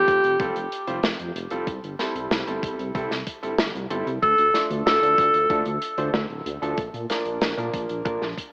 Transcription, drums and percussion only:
0.08 kick, closed hi-hat
0.24 closed hi-hat
0.40 kick, closed hi-hat
0.56 closed hi-hat
0.72 closed hi-hat
0.87 closed hi-hat
1.03 snare, closed hi-hat
1.19 closed hi-hat
1.36 closed hi-hat
1.51 closed hi-hat
1.67 kick, closed hi-hat
1.84 closed hi-hat
1.99 snare, closed hi-hat
2.16 closed hi-hat
2.31 snare, closed hi-hat
2.47 closed hi-hat
2.63 kick, closed hi-hat
2.79 closed hi-hat
2.95 kick, closed hi-hat
3.11 snare, closed hi-hat
3.27 kick, closed hi-hat
3.43 closed hi-hat
3.59 snare, closed hi-hat
3.76 closed hi-hat
3.90 closed hi-hat
4.07 closed hi-hat
4.23 kick, closed hi-hat
4.38 closed hi-hat
4.54 snare, closed hi-hat
4.70 closed hi-hat
4.87 snare, closed hi-hat
5.03 closed hi-hat
5.18 kick, closed hi-hat
5.34 closed hi-hat
5.50 kick, closed hi-hat
5.66 closed hi-hat
5.82 closed hi-hat
5.98 closed hi-hat
6.14 snare, closed hi-hat
6.30 closed hi-hat
6.46 closed hi-hat
6.63 closed hi-hat
6.78 kick, closed hi-hat
6.94 closed hi-hat
7.10 snare, closed hi-hat
7.25 closed hi-hat
7.41 snare, closed hi-hat
7.58 closed hi-hat
7.74 kick, closed hi-hat
7.89 closed hi-hat
8.06 kick, closed hi-hat
8.22 snare, closed hi-hat
8.37 kick, closed hi-hat

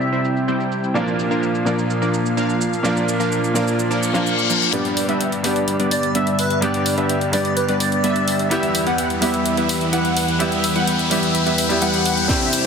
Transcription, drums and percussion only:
0.01 shaker
0.13 shaker
0.25 shaker
0.37 shaker
0.48 shaker
0.60 shaker
0.72 shaker
0.84 shaker
0.96 shaker
1.08 shaker
1.19 shaker
1.31 shaker
1.43 shaker
1.55 shaker
1.67 shaker
1.79 shaker
1.90 shaker
2.02 shaker
2.14 shaker
2.26 shaker
2.38 shaker
2.50 shaker
2.61 shaker
2.73 shaker
2.85 shaker
2.97 shaker
3.09 shaker
3.21 shaker
3.32 shaker
3.44 shaker
3.56 shaker
3.68 shaker
3.79 shaker
3.91 shaker
4.03 shaker
4.15 shaker
4.27 shaker
4.38 shaker
4.50 shaker
4.62 shaker
4.73 closed hi-hat
4.85 closed hi-hat
4.97 open hi-hat
5.09 closed hi-hat
5.21 closed hi-hat
5.32 closed hi-hat
5.44 open hi-hat
5.56 closed hi-hat
5.68 closed hi-hat
5.80 closed hi-hat
5.91 open hi-hat
6.03 closed hi-hat
6.15 closed hi-hat
6.27 closed hi-hat
6.39 open hi-hat
6.50 closed hi-hat
6.62 closed hi-hat
6.74 closed hi-hat
6.86 open hi-hat
6.98 closed hi-hat
7.09 closed hi-hat
7.21 closed hi-hat
7.33 open hi-hat
7.45 closed hi-hat
7.57 closed hi-hat
7.69 closed hi-hat
7.80 open hi-hat
7.92 closed hi-hat
8.04 closed hi-hat
8.16 closed hi-hat
8.28 open hi-hat
8.39 closed hi-hat
8.51 closed hi-hat
8.63 closed hi-hat
8.75 open hi-hat
8.87 closed hi-hat
8.98 closed hi-hat
9.10 closed hi-hat
9.22 open hi-hat
9.34 closed hi-hat
9.46 closed hi-hat
9.57 closed hi-hat
9.69 open hi-hat
9.81 closed hi-hat
9.93 closed hi-hat
10.05 closed hi-hat
10.17 open hi-hat
10.28 closed hi-hat
10.40 closed hi-hat
10.52 closed hi-hat
10.64 open hi-hat
10.76 closed hi-hat
10.87 closed hi-hat
10.99 closed hi-hat
11.11 open hi-hat
11.23 closed hi-hat
11.35 closed hi-hat
11.47 closed hi-hat
11.58 open hi-hat
11.70 closed hi-hat
11.82 closed hi-hat
11.94 closed hi-hat
12.06 open hi-hat
12.17 closed hi-hat
12.29 kick, snare, closed hi-hat, shaker
12.41 closed hi-hat, shaker
12.53 open hi-hat, shaker

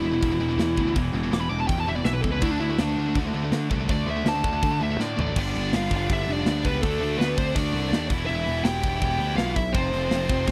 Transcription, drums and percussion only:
0.22 kick, open hi-hat
0.59 snare, open hi-hat
0.77 kick
0.95 kick, open hi-hat
1.33 snare, open hi-hat
1.69 kick, open hi-hat
2.05 snare, open hi-hat
2.24 kick
2.41 kick, open hi-hat
2.78 snare, open hi-hat
3.15 kick, open hi-hat
3.52 snare, open hi-hat
3.71 kick
3.88 kick, open hi-hat
4.26 snare, open hi-hat
4.44 kick
4.63 kick, open hi-hat
5.00 snare
5.19 floor tom
5.36 kick, crash
5.56 open hi-hat
5.73 snare, open hi-hat
5.91 kick, open hi-hat
6.09 kick, open hi-hat
6.29 open hi-hat
6.46 snare, open hi-hat
6.65 kick, open hi-hat
6.83 kick, open hi-hat
7.03 open hi-hat
7.21 snare, open hi-hat
7.38 kick, open hi-hat
7.56 kick, open hi-hat
7.75 open hi-hat
7.93 snare, open hi-hat
8.10 kick, open hi-hat
8.28 open hi-hat
8.47 open hi-hat
8.65 snare, open hi-hat
8.84 kick, open hi-hat
9.02 kick, open hi-hat
9.21 open hi-hat
9.38 snare, open hi-hat
9.56 kick, open hi-hat
9.75 kick, open hi-hat
9.93 open hi-hat
10.11 snare, open hi-hat
10.29 kick, open hi-hat
10.48 kick, snare

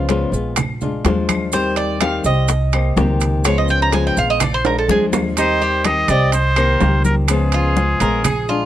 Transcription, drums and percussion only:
0.09 high bongo, high conga, high timbale, maracas
0.34 high conga, maracas
0.56 high bongo, high conga, low conga, high timbale, claves, maracas
0.81 high bongo, high conga, low conga, maracas
1.05 high bongo, low bongo, high conga, high timbale, low timbale, maracas
1.29 high bongo, high conga, high timbale, claves, maracas
1.52 high bongo, high conga, maracas
1.76 high conga, high timbale, maracas
2.00 high bongo, high conga, high timbale, claves, maracas
2.24 high conga, maracas
2.48 high bongo, high conga, high timbale, maracas
2.72 high conga, high timbale, claves, maracas
2.97 high bongo, low bongo, high conga, low timbale, maracas
3.20 high timbale, maracas
3.44 high bongo, high conga, high timbale, claves, maracas
3.68 high bongo, high conga, maracas
3.92 high bongo, high conga, high timbale, maracas
4.17 high conga, maracas
4.40 high bongo, high conga, low conga, high timbale, claves, maracas
4.65 high bongo, high conga, high timbale, maracas
4.89 high bongo, high conga, maracas
5.13 low bongo, high conga, low timbale, claves, maracas
5.37 high conga, high timbale, maracas
5.61 high conga, maracas
5.85 high conga, high timbale, low timbale, claves, maracas
6.08 high timbale, maracas
6.32 high conga, high timbale, maracas
6.56 high conga, high timbale, claves, maracas
6.80 high conga, low timbale, maracas
7.05 high conga, maracas
7.28 high conga, high timbale, claves, maracas
7.52 high conga, high timbale, maracas
7.76 high conga, low timbale, maracas
8.00 high conga, high timbale, maracas
8.24 high conga, low conga, high timbale, claves, maracas
8.48 high conga, maracas

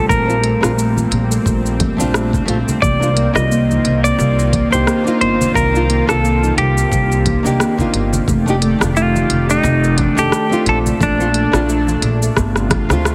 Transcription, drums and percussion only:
0.10 kick, high conga, shaker
0.30 shaker
0.44 closed hi-hat
0.63 cross-stick, shaker
0.79 shaker
0.97 high conga, shaker
1.12 closed hi-hat
1.32 shaker
1.46 kick, shaker
1.66 shaker
1.80 kick, closed hi-hat, high conga
2.00 low conga, shaker
2.14 cross-stick, shaker
2.33 kick, low conga, shaker
2.48 closed hi-hat
2.68 low conga, shaker
2.82 kick, high conga, shaker
3.03 shaker
3.17 closed hi-hat
3.36 cross-stick, shaker
3.52 shaker
3.70 high conga, shaker
3.85 closed hi-hat
4.05 shaker
4.20 shaker
4.39 shaker
4.53 kick, closed hi-hat, high conga
4.73 shaker
4.87 cross-stick, shaker
5.07 shaker
5.21 closed hi-hat
5.41 low conga, shaker
5.54 kick, high conga, shaker
5.75 shaker
5.90 closed hi-hat
6.09 cross-stick, shaker
6.25 shaker
6.43 high conga, shaker
6.58 closed hi-hat
6.78 shaker
6.92 kick, shaker
7.12 shaker
7.26 kick, closed hi-hat, high conga
7.44 low conga, shaker
7.60 cross-stick, shaker
7.78 kick, low conga, shaker
7.94 closed hi-hat
8.13 low conga, shaker
8.28 kick, high conga, shaker
8.48 shaker
8.62 closed hi-hat
8.81 cross-stick, shaker
8.97 shaker
9.15 high conga, shaker
9.30 closed hi-hat
9.50 shaker
9.65 shaker
9.84 shaker
9.98 kick, closed hi-hat, high conga
10.18 shaker
10.32 cross-stick, shaker
10.52 shaker
10.66 closed hi-hat
10.86 low conga, shaker
11.01 kick, high conga, shaker
11.20 shaker
11.34 closed hi-hat
11.53 cross-stick, shaker
11.69 shaker
11.87 high conga, shaker
12.02 closed hi-hat
12.23 shaker
12.37 kick, cross-stick, shaker
12.56 cross-stick, shaker
12.70 kick, cross-stick, closed hi-hat, high conga
12.90 cross-stick, low conga, shaker
13.05 cross-stick, shaker

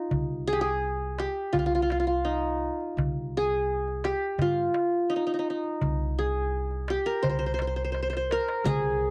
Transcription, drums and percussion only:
0.11 darbuka dum
1.02 darbuka ka
1.18 darbuka tek
1.54 darbuka dum
1.90 darbuka tek
2.81 darbuka ka
2.98 darbuka dum
3.88 darbuka ka
4.04 darbuka tek
4.39 darbuka dum
4.74 darbuka tek
5.12 darbuka ka
5.64 darbuka ka
5.81 darbuka dum
6.71 darbuka ka
6.88 darbuka tek
7.24 darbuka dum
7.42 darbuka ka
7.59 darbuka tek
7.77 darbuka ka
7.94 darbuka tek
8.13 darbuka ka
8.31 darbuka tek
8.48 darbuka ka
8.65 riq, darbuka dum

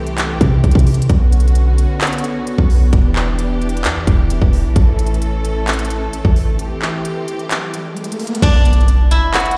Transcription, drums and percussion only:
0.07 closed hi-hat
0.18 clap, closed hi-hat
0.41 kick, closed hi-hat
0.64 kick, closed hi-hat
0.71 kick, closed hi-hat
0.79 closed hi-hat
0.87 closed hi-hat, open hi-hat
0.94 closed hi-hat
1.02 closed hi-hat
1.09 kick, closed hi-hat
1.32 closed hi-hat
1.40 closed hi-hat
1.48 closed hi-hat
1.55 closed hi-hat
1.78 closed hi-hat
2.01 clap, closed hi-hat
2.07 closed hi-hat
2.13 closed hi-hat
2.18 closed hi-hat
2.24 closed hi-hat
2.47 closed hi-hat
2.58 kick
2.70 open hi-hat
2.93 kick, closed hi-hat
3.16 clap
3.39 closed hi-hat
3.62 closed hi-hat
3.69 closed hi-hat
3.77 closed hi-hat
3.84 clap, closed hi-hat
4.07 kick, closed hi-hat
4.30 closed hi-hat
4.42 kick
4.53 open hi-hat
4.76 kick, closed hi-hat
4.99 closed hi-hat
5.07 closed hi-hat
5.14 closed hi-hat
5.22 closed hi-hat
5.45 closed hi-hat
5.68 clap, closed hi-hat
5.73 closed hi-hat
5.79 closed hi-hat
5.85 closed hi-hat
5.90 closed hi-hat
6.13 closed hi-hat
6.25 kick
6.36 open hi-hat
6.59 closed hi-hat
6.82 clap
7.05 closed hi-hat
7.28 closed hi-hat
7.39 closed hi-hat
7.51 clap, closed hi-hat
7.74 closed hi-hat
7.97 closed hi-hat
8.04 closed hi-hat
8.12 closed hi-hat
8.20 closed hi-hat, open hi-hat
8.27 closed hi-hat
8.35 closed hi-hat
8.42 kick, closed hi-hat, crash
8.65 closed hi-hat
8.73 closed hi-hat
8.81 closed hi-hat
8.88 closed hi-hat
9.11 closed hi-hat
9.34 clap, closed hi-hat
9.40 closed hi-hat
9.45 closed hi-hat
9.51 closed hi-hat

